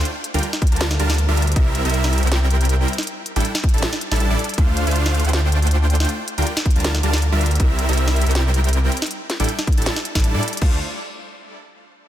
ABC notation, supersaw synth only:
X:1
M:4/4
L:1/16
Q:"Swing 16ths" 1/4=159
K:Dm
V:1 name="Supersaw synth"
z3 [G,DFBg] z3 [G,DFBa] z2 [G,DFBa] z2 [G,DFBe] z2 | [G,CEBe]3 [G,CEBe]4 [G,CEBg]6- [G,CEBg] z2 | z3 [G,DEAg] z3 [G,DEAa] z3 [G,DEAa]2 [G,DEAd] z2 | [A,DFcf]3 [A,DFcf]4 [A,DFcg]8- [A,DFcg] |
z3 [G,DFBg] z3 [G,DFBa] z2 [G,DFBa] z2 [G,DFBe] z2 | [G,CEBe]3 [G,CEBe]4 [G,CEBg]6- [G,CEBg] z2 | z3 [G,DEAg] z3 [G,DEAa] z3 [G,DEAa]2 [G,DEAd] z2 | [A,DFcf]2 z12 z2 |]